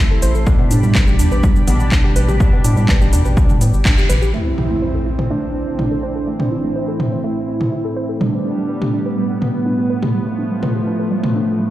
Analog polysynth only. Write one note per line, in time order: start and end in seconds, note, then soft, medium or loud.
0.00 0.44 C3 medium
0.00 0.44 A3 medium
0.00 0.44 E4 loud
0.47 1.65 B2 medium
0.47 1.65 G3 medium
0.47 1.65 D4 loud
1.68 2.37 B2 medium
1.68 2.37 G3 medium
1.68 2.37 D4 loud
2.40 3.58 B2 medium
2.40 3.58 G3 medium
2.40 3.58 D4 loud